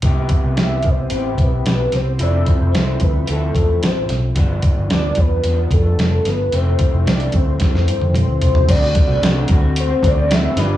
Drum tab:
CC |----------------|----------------|----------------|----------------|
HH |x-x-x-x-x-x-x-x-|x-x-x-x-x-x-x-x-|x-x-x-x-x-x-x-x-|x-x-xxx-x-x-x-x-|
SD |----o-------o-o-|----o-------o-o-|----o-------o-o-|----o---oo------|
T1 |----------------|----------------|----------------|-----------o----|
T2 |----------------|----------------|----------------|------------o---|
FT |----------------|----------------|----------------|--------------oo|
BD |o-o---o---o-----|--o---o---o-----|o-o---o---o-----|--o---o-o-------|

CC |x---------------|
HH |x-x-x-x-x-x-x-x-|
SD |----o-------o-o-|
T1 |----------------|
T2 |----------------|
FT |----------------|
BD |o-o---o---o-----|